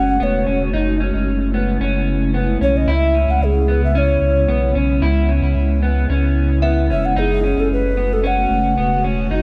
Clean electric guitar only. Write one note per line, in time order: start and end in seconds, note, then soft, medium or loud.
0.00 0.20 C#4 medium
0.20 0.46 B3 medium
0.47 0.73 C#4 medium
0.74 1.00 D#4 medium
1.00 1.54 C#4 medium
1.54 1.81 B3 medium
1.81 2.34 C#4 medium
2.34 2.61 B3 medium
2.61 2.88 C#4 medium
2.88 3.15 E4 medium
3.15 3.68 C#4 medium
3.68 3.95 B3 medium
3.95 4.48 C#4 medium
4.48 4.75 B3 medium
4.75 5.02 C#4 medium
5.02 5.29 E4 medium
5.29 5.82 C#4 medium
5.83 6.09 B3 medium
6.10 6.62 C#4 medium
6.63 6.90 B3 medium
6.90 7.16 C#4 medium
7.16 7.43 D#4 loud
7.44 7.97 C#4 medium
7.97 8.23 B3 medium
8.24 8.77 C#4 medium
8.78 9.04 B3 medium
9.04 9.31 C#4 medium
9.31 9.42 D#4 medium